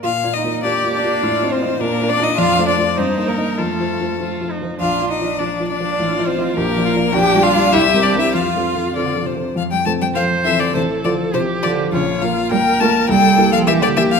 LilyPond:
<<
  \new Staff \with { instrumentName = "Violin" } { \time 2/4 \key bes \major \tempo 4 = 102 f''8 ees''8 d''8 d''8~ | d''8 c''8 bes'8 d''16 ees''16 | f''8 d''8 c''8 bes'8 | a'4. r8 |
f''8 ees''8 d''8 d''8~ | d''8 c''8 bes'4 | \key f \major g''8 f''8 e''8 d''16 e''16 | f''4 d''8 c''8 |
f''16 g''16 a''16 g''16 f''8 e''16 d''16 | c''8 d''8 c''8 d''8 | des''8 f''8 g''8 a''8 | g''8. f''16 e''16 d''16 e''16 f''16 | }
  \new Staff \with { instrumentName = "Grand piano" } { \time 2/4 \key bes \major \tuplet 3/2 { bes,8 <bes f' d''>8 <bes f' d''>8 <bes f' d''>8 <bes f' d''>8 <bes f' d''>8 } | \tuplet 3/2 { a,8 <c' f' ees''>8 <c' f' ees''>8 bes,8 <d' f' d''>8 <d' f' d''>8 } | \tuplet 3/2 { f,8 <a f' c''>8 <a f' c''>8 g,8 <bes ees' ees''>8 <bes ees' ees''>8 } | \tuplet 3/2 { f,8 <f f' c''>8 <f f' c''>8 <f f' c''>8 <f f' c''>8 <f f' c''>8 } |
\tuplet 3/2 { bes,,8 <f f' d''>8 <f f' d''>8 <f f' d''>8 <f f' d''>8 <f f' d''>8 } | \tuplet 3/2 { a,,8 <f f' ees''>8 <f f' ees''>8 bes,,8 <f f' d''>8 <f f' d''>8 } | \key f \major \tuplet 3/2 { bes,,8 <g f' d''>8 <g f' d''>8 c,8 <g c' bes'>8 <g c' bes'>8 } | \tuplet 3/2 { f,8 <f c' a'>8 <f c' a'>8 <f c' a'>8 <f c' a'>8 <f c' a'>8 } |
f,8 <f c' a'>8 <f c' a'>8 <f c' a'>8 | a,,8 <f f' c''>8 <f f' c''>8 <f f' c''>8 | bes,,8 <bes f' bes'>8 <bes f' bes'>8 <bes f' bes'>8 | c,8 <bes e' g'>8 <bes e' g'>8 <bes e' g'>8 | }
  \new Staff \with { instrumentName = "Viola" } { \time 2/4 \key bes \major r4 g'4 | f'4 d'4~ | d'4 ees'4 | f'4 f'8 ees'8 |
d'2 | f'4 g'8 f'8 | \key f \major d'4 g'4 | f'4. r8 |
r4 c''4 | a'4 g'4 | f'4 bes'4 | a'4 g'4 | }
  \new Staff \with { instrumentName = "Cello" } { \time 2/4 \key bes \major f'8 ees'8 d'8 d'8~ | d'8 c'8 bes8 d'16 ees'16 | f'8 d'8 c'8 bes8 | a4. r8 |
f'8 ees'8 d'8 d'8~ | d'8 c'8 bes4 | \key f \major g'8 f'8 e'8 d'16 e'16 | f'4 d8 c8 |
f16 g16 a16 g16 f8 e16 d16 | c8 d8 c8 d8 | des8 f8 g8 a8 | g8. f16 e16 d16 e16 f16 | }
>>